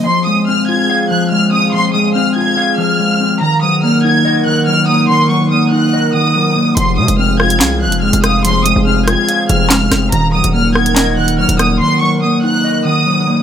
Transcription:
<<
  \new Staff \with { instrumentName = "Violin section" } { \time 4/4 \key f \phrygian \tempo 4 = 143 c'''8 ees'''8 f'''8 aes'''4 ges'''8 f'''8 ees'''8 | c'''8 ees'''8 f'''8 aes'''4 f'''4. | bes''8 ees'''8 f'''8 aes'''4 ges'''8 f'''8 ees'''8 | c'''8 des'''8 ees'''8 ges'''4 ees'''4. |
c'''8 ees'''8 f'''8 aes'''4 ges'''8 f'''8 ees'''8 | c'''8 ees'''8 f'''8 aes'''4 f'''4. | bes''8 ees'''8 f'''8 aes'''4 ges'''8 f'''8 ees'''8 | c'''8 des'''8 ees'''8 ges'''4 ees'''4. | }
  \new Staff \with { instrumentName = "Analog synth pad" } { \time 4/4 \key f \phrygian <f c' aes' f''>1~ | <f c' aes' f''>1 | <ees ees' bes' ges''>1~ | <ees ees' bes' ges''>1 |
<f c' aes' f''>1~ | <f c' aes' f''>1 | <ees ees' bes' ges''>1~ | <ees ees' bes' ges''>1 | }
  \new Staff \with { instrumentName = "Clean electric guitar" } { \time 4/4 \key f \phrygian f8 aes8 c'8 f'8 f''8 f8 aes8 c'8 | f8 aes8 c'8 f'8 f''8 f8 aes8 c'8 | ees8 ges8 bes8 ees'8 ees''8 ees8 ges8 bes8 | ees8 ges8 bes8 ees'8 ees''8 ees8 ges8 bes8 |
f8 aes8 c'8 f'8 f''8 f8 aes8 c'8 | f8 aes8 c'8 f'8 f''8 f8 aes8 c'8 | ees8 ges8 bes8 ees'8 ees''8 ees8 ges8 bes8 | ees8 ges8 bes8 ees'8 ees''8 ees8 ges8 bes8 | }
  \new Staff \with { instrumentName = "808-style bass" } { \clef bass \time 4/4 \key f \phrygian r1 | r1 | r1 | r1 |
f,,8 c16 f,,4~ f,,16 c,8~ c,32 f,,8~ f,,32 f,,8.~ | f,,8. f,,4 r8. f,,4 f,,8 | ees,,8. ees,,2~ ees,,8 ees,,8. | r1 | }
  \new DrumStaff \with { instrumentName = "Drums" } \drummode { \time 4/4 r4 r4 r4 r4 | r4 r4 r4 r4 | r4 r4 r4 r4 | r4 r4 r4 r4 |
hh8. hh16 r8 ss16 hh16 <hc hh sn>8. hh16 r16 hh16 <hh ss>8 | hh8 hh8 r8 <hh ss>8 hh8 hh8 <hc sn>8 <hh ss sn>8 | hh8. hh16 r8 ss16 hh16 <hc hh sn>8. hh16 r16 hh16 <hh ss>8 | r4 r4 r4 r4 | }
>>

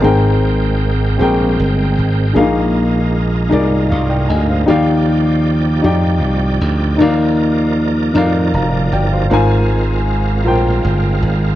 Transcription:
<<
  \new Staff \with { instrumentName = "Upright piano" } { \time 6/8 \key aes \lydian \tempo 4. = 52 << { ees''16 r2 r8. | r2 f''16 <d'' g''>16 <ees'' aes''>16 <c'' f''>16~ | <c'' f''>16 r2 r8. | r2 <f'' bes''>8 <d'' g''>16 <c'' f''>16~ |
<c'' f''>16 r2 r8. | } \\ { <c' aes' bes' g''>4 r8 <c' aes' bes' g''>4 r8 | <d' ees' aes' bes' f''>4 r8 <ees' aes' bes' d''>4 r8 | <ees' g' d'' f''>4 r8 <ees' g' d'' g''>4 r8 | <ees' bes' d'' f''>4 r8 <ees' bes' d'' f''>4 r8 |
<f' bes' c'' aes''>4 r8 <f' bes' c'' g''>4 r8 | } >> }
  \new Staff \with { instrumentName = "Upright piano" } { \clef bass \time 6/8 \key aes \lydian aes,4. r4. | bes,4. r4. | ees4. r4. | ees4. r4. |
aes,4. r4. | }
  \new Staff \with { instrumentName = "Tonewheel organ" } { \time 6/8 \key aes \lydian << { bes'2.~ | bes'2. | g'2. | bes'2.~ |
bes'2. | } \\ { <c' g''>2. | <ees' f'>2. | d''2.~ | d''2. |
<c' f'>2. | } >> }
  \new Staff \with { instrumentName = "Tonewheel organ" } { \clef bass \time 6/8 \key aes \lydian aes2.~ | aes2. | f2. | f2. |
aes2. | }
  \new Staff \with { instrumentName = "Slap bass" } { \clef bass \time 6/8 \key aes \lydian aes,,4. bes,,8 g,,8 aes,,8 | bes,,4. c,8 c,8 d,8 | ees,4. f,8 c,8 d,8 | ees,4. f,8 f,,8 g,,8 |
aes,,4. bes,,8 g,,8 aes,,8 | }
>>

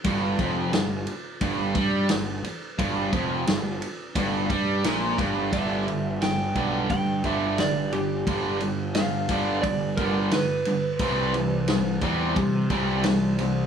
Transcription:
<<
  \new Staff \with { instrumentName = "Electric slide guitar" } { \time 4/4 \key g \major \tempo 4 = 88 r1 | r1 | e''4 g''4 g''8 e''8 d''8 g'8~ | g'8 r8 f''4 d''8 bes'8 b'4~ |
b'2 r2 | }
  \new Staff \with { instrumentName = "Distorted electric guitar" } { \clef bass \time 4/4 \key g \major g,8 f,8 g,8 r8 g,8 g8 g,8 r8 | g,8 f,8 g,8 r8 g,8 g8 bes,8 g,8 | <g, d g>8 <g, d>8 <g, d>8 <g, d g>8 <g, d>8 <g, d g>8 <g, d>8 <g, d>8 | <g, d g>8 <g, d>8 <g, d>8 <g, d g>8 <g, d>8 <g, d g>8 <g, d>8 <g, d>8 |
<c g c'>8 <c g>8 <c g>8 <c g c'>8 <c g>8 <c g c'>8 <c g>8 <c g>8 | }
  \new Staff \with { instrumentName = "Overdriven electric guitar" } { \clef bass \time 4/4 \key g \major g,8 f,8 g,8 r8 g,8 g8 g,8 r8 | g,8 f,8 g,8 r8 g,8 g8 bes,8 g,8 | <g, d g>8 <g, d>8 <g, d>8 <g, d g>8 <g, d>8 <g, d g>8 <g, d>8 <g, d>8 | <g, d g>8 <g, d>8 <g, d>8 <g, d g>8 <g, d>8 <g, d g>8 <g, d>8 <g, d>8 |
<c e g>8 <c e>8 <c e>8 <c e g>8 <c e>8 <c e g>8 <c e>8 <c e>8 | }
  \new Staff \with { instrumentName = "Picked electric bass" } { \clef bass \time 4/4 \key g \major g,,8 f,,8 g,,8 r8 g,,8 g,8 g,,8 r8 | g,,8 f,,8 g,,8 r8 g,,8 g,8 bes,,8 g,,8 | g,,4. b,,8 g,8 g,,4. | g,,4. g,,8 g,,8 g,,8 r4 |
c,4. e,8 c8 c,4. | }
  \new DrumStaff \with { instrumentName = "Drums" } \drummode { \time 4/4 <bd cymr>8 <bd cymr>8 <cymr sn>8 cymr8 <bd cymr>8 <bd cymr>8 <cymr sn>8 cymr8 | <bd cymr>8 <bd cymr>8 <cymr sn>8 cymr8 <bd cymr>8 <bd cymr>8 <cymr sn>8 <bd cymr>8 | <bd cymr>8 cymr8 <cymr sn>8 <bd cymr>8 <bd cymr>8 <bd cymr>8 <cymr sn>8 cymr8 | <bd cymr>8 cymr8 <cymr sn>8 <bd cymr>8 <bd cymr>8 <bd cymr>8 <cymr sn>8 cymr8 |
<bd cymr>8 cymr8 <cymr sn>8 <bd cymr>8 <bd cymr>8 <bd cymr>8 <cymr sn>8 cymr8 | }
>>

